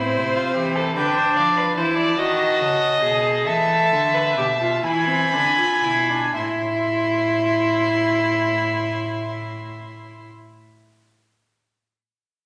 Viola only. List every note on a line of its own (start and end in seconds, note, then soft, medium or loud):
0.00 0.96 C4 loud
0.97 1.76 D4 loud
1.77 2.17 E4 loud
2.18 3.01 F#4 loud
3.03 3.48 G#4 loud
3.46 4.15 A4 loud
4.14 4.37 B4 medium
4.37 4.45 G4 medium
4.61 4.84 F4 medium
4.85 5.08 E4 medium
5.09 5.35 C4 medium
5.33 5.58 D4 loud
5.58 5.85 F4 medium
5.84 6.11 E4 medium
6.09 6.35 D4 medium
6.35 10.26 E4 loud